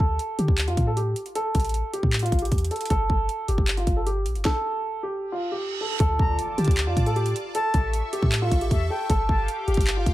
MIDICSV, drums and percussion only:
0, 0, Header, 1, 2, 480
1, 0, Start_track
1, 0, Key_signature, -1, "minor"
1, 0, Tempo, 387097
1, 1679, Time_signature, 4, 2, 24, 8
1, 12570, End_track
2, 0, Start_track
2, 0, Title_t, "Drums"
2, 240, Note_on_c, 9, 42, 75
2, 364, Note_off_c, 9, 42, 0
2, 480, Note_on_c, 9, 42, 78
2, 599, Note_on_c, 9, 36, 96
2, 604, Note_off_c, 9, 42, 0
2, 719, Note_on_c, 9, 39, 113
2, 719, Note_on_c, 9, 42, 80
2, 723, Note_off_c, 9, 36, 0
2, 839, Note_off_c, 9, 42, 0
2, 839, Note_on_c, 9, 42, 45
2, 843, Note_off_c, 9, 39, 0
2, 958, Note_on_c, 9, 36, 93
2, 959, Note_off_c, 9, 42, 0
2, 959, Note_on_c, 9, 42, 78
2, 1082, Note_off_c, 9, 36, 0
2, 1083, Note_off_c, 9, 42, 0
2, 1202, Note_on_c, 9, 42, 69
2, 1326, Note_off_c, 9, 42, 0
2, 1440, Note_on_c, 9, 42, 73
2, 1560, Note_off_c, 9, 42, 0
2, 1560, Note_on_c, 9, 42, 44
2, 1679, Note_off_c, 9, 42, 0
2, 1679, Note_on_c, 9, 42, 87
2, 1803, Note_off_c, 9, 42, 0
2, 1916, Note_on_c, 9, 46, 81
2, 1919, Note_on_c, 9, 42, 80
2, 1920, Note_on_c, 9, 36, 97
2, 1980, Note_off_c, 9, 42, 0
2, 1980, Note_on_c, 9, 42, 68
2, 2040, Note_off_c, 9, 42, 0
2, 2040, Note_off_c, 9, 46, 0
2, 2040, Note_on_c, 9, 42, 59
2, 2044, Note_off_c, 9, 36, 0
2, 2100, Note_off_c, 9, 42, 0
2, 2100, Note_on_c, 9, 42, 48
2, 2159, Note_off_c, 9, 42, 0
2, 2159, Note_on_c, 9, 42, 73
2, 2283, Note_off_c, 9, 42, 0
2, 2399, Note_on_c, 9, 42, 83
2, 2519, Note_on_c, 9, 36, 94
2, 2523, Note_off_c, 9, 42, 0
2, 2639, Note_on_c, 9, 39, 110
2, 2639, Note_on_c, 9, 42, 67
2, 2643, Note_off_c, 9, 36, 0
2, 2719, Note_off_c, 9, 42, 0
2, 2719, Note_on_c, 9, 42, 67
2, 2763, Note_off_c, 9, 39, 0
2, 2799, Note_off_c, 9, 42, 0
2, 2799, Note_on_c, 9, 42, 66
2, 2878, Note_on_c, 9, 36, 91
2, 2880, Note_off_c, 9, 42, 0
2, 2880, Note_on_c, 9, 42, 66
2, 2960, Note_off_c, 9, 42, 0
2, 2960, Note_on_c, 9, 42, 64
2, 3002, Note_off_c, 9, 36, 0
2, 3040, Note_off_c, 9, 42, 0
2, 3040, Note_on_c, 9, 42, 65
2, 3120, Note_off_c, 9, 42, 0
2, 3120, Note_on_c, 9, 36, 93
2, 3120, Note_on_c, 9, 42, 62
2, 3200, Note_off_c, 9, 42, 0
2, 3200, Note_on_c, 9, 42, 71
2, 3244, Note_off_c, 9, 36, 0
2, 3280, Note_off_c, 9, 42, 0
2, 3280, Note_on_c, 9, 42, 76
2, 3360, Note_off_c, 9, 42, 0
2, 3360, Note_on_c, 9, 42, 46
2, 3420, Note_off_c, 9, 42, 0
2, 3420, Note_on_c, 9, 42, 55
2, 3480, Note_off_c, 9, 42, 0
2, 3480, Note_on_c, 9, 42, 66
2, 3540, Note_off_c, 9, 42, 0
2, 3540, Note_on_c, 9, 42, 73
2, 3600, Note_off_c, 9, 42, 0
2, 3600, Note_on_c, 9, 36, 117
2, 3600, Note_on_c, 9, 42, 89
2, 3724, Note_off_c, 9, 36, 0
2, 3724, Note_off_c, 9, 42, 0
2, 3840, Note_on_c, 9, 36, 94
2, 3964, Note_off_c, 9, 36, 0
2, 4080, Note_on_c, 9, 42, 69
2, 4204, Note_off_c, 9, 42, 0
2, 4320, Note_on_c, 9, 42, 79
2, 4439, Note_on_c, 9, 36, 93
2, 4444, Note_off_c, 9, 42, 0
2, 4559, Note_on_c, 9, 39, 112
2, 4559, Note_on_c, 9, 42, 77
2, 4563, Note_off_c, 9, 36, 0
2, 4679, Note_off_c, 9, 42, 0
2, 4679, Note_on_c, 9, 42, 45
2, 4683, Note_off_c, 9, 39, 0
2, 4798, Note_on_c, 9, 36, 90
2, 4799, Note_off_c, 9, 42, 0
2, 4799, Note_on_c, 9, 42, 79
2, 4922, Note_off_c, 9, 36, 0
2, 4923, Note_off_c, 9, 42, 0
2, 5042, Note_on_c, 9, 42, 67
2, 5166, Note_off_c, 9, 42, 0
2, 5279, Note_on_c, 9, 42, 75
2, 5399, Note_off_c, 9, 42, 0
2, 5399, Note_on_c, 9, 42, 43
2, 5519, Note_on_c, 9, 36, 114
2, 5519, Note_on_c, 9, 38, 92
2, 5523, Note_off_c, 9, 42, 0
2, 5643, Note_off_c, 9, 36, 0
2, 5643, Note_off_c, 9, 38, 0
2, 7439, Note_on_c, 9, 36, 116
2, 7439, Note_on_c, 9, 42, 89
2, 7563, Note_off_c, 9, 36, 0
2, 7563, Note_off_c, 9, 42, 0
2, 7680, Note_on_c, 9, 36, 99
2, 7804, Note_off_c, 9, 36, 0
2, 7920, Note_on_c, 9, 42, 75
2, 8044, Note_off_c, 9, 42, 0
2, 8159, Note_on_c, 9, 42, 49
2, 8239, Note_off_c, 9, 42, 0
2, 8239, Note_on_c, 9, 42, 65
2, 8279, Note_on_c, 9, 36, 96
2, 8320, Note_off_c, 9, 42, 0
2, 8320, Note_on_c, 9, 42, 81
2, 8397, Note_off_c, 9, 42, 0
2, 8397, Note_on_c, 9, 42, 86
2, 8400, Note_on_c, 9, 39, 116
2, 8403, Note_off_c, 9, 36, 0
2, 8521, Note_off_c, 9, 42, 0
2, 8524, Note_off_c, 9, 39, 0
2, 8638, Note_on_c, 9, 36, 90
2, 8640, Note_on_c, 9, 42, 77
2, 8759, Note_off_c, 9, 42, 0
2, 8759, Note_on_c, 9, 42, 45
2, 8762, Note_off_c, 9, 36, 0
2, 8879, Note_off_c, 9, 42, 0
2, 8879, Note_on_c, 9, 42, 43
2, 8999, Note_off_c, 9, 42, 0
2, 8999, Note_on_c, 9, 42, 71
2, 9123, Note_off_c, 9, 42, 0
2, 9124, Note_on_c, 9, 42, 84
2, 9248, Note_off_c, 9, 42, 0
2, 9359, Note_on_c, 9, 42, 89
2, 9483, Note_off_c, 9, 42, 0
2, 9596, Note_on_c, 9, 42, 79
2, 9600, Note_on_c, 9, 36, 98
2, 9720, Note_off_c, 9, 42, 0
2, 9724, Note_off_c, 9, 36, 0
2, 9839, Note_on_c, 9, 42, 73
2, 9963, Note_off_c, 9, 42, 0
2, 10080, Note_on_c, 9, 42, 87
2, 10199, Note_on_c, 9, 36, 97
2, 10204, Note_off_c, 9, 42, 0
2, 10316, Note_on_c, 9, 42, 85
2, 10319, Note_on_c, 9, 39, 116
2, 10323, Note_off_c, 9, 36, 0
2, 10440, Note_off_c, 9, 42, 0
2, 10443, Note_off_c, 9, 39, 0
2, 10558, Note_on_c, 9, 36, 95
2, 10559, Note_on_c, 9, 42, 75
2, 10679, Note_off_c, 9, 42, 0
2, 10679, Note_on_c, 9, 42, 46
2, 10682, Note_off_c, 9, 36, 0
2, 10800, Note_on_c, 9, 36, 95
2, 10802, Note_off_c, 9, 42, 0
2, 10802, Note_on_c, 9, 42, 69
2, 10924, Note_off_c, 9, 36, 0
2, 10926, Note_off_c, 9, 42, 0
2, 11279, Note_on_c, 9, 36, 118
2, 11279, Note_on_c, 9, 42, 90
2, 11403, Note_off_c, 9, 36, 0
2, 11403, Note_off_c, 9, 42, 0
2, 11520, Note_on_c, 9, 36, 97
2, 11644, Note_off_c, 9, 36, 0
2, 11760, Note_on_c, 9, 42, 75
2, 11884, Note_off_c, 9, 42, 0
2, 12000, Note_on_c, 9, 42, 48
2, 12080, Note_off_c, 9, 42, 0
2, 12080, Note_on_c, 9, 42, 65
2, 12119, Note_on_c, 9, 36, 98
2, 12160, Note_off_c, 9, 42, 0
2, 12160, Note_on_c, 9, 42, 81
2, 12238, Note_off_c, 9, 42, 0
2, 12238, Note_on_c, 9, 42, 86
2, 12240, Note_on_c, 9, 39, 112
2, 12243, Note_off_c, 9, 36, 0
2, 12362, Note_off_c, 9, 42, 0
2, 12364, Note_off_c, 9, 39, 0
2, 12478, Note_on_c, 9, 36, 96
2, 12480, Note_on_c, 9, 42, 75
2, 12570, Note_off_c, 9, 36, 0
2, 12570, Note_off_c, 9, 42, 0
2, 12570, End_track
0, 0, End_of_file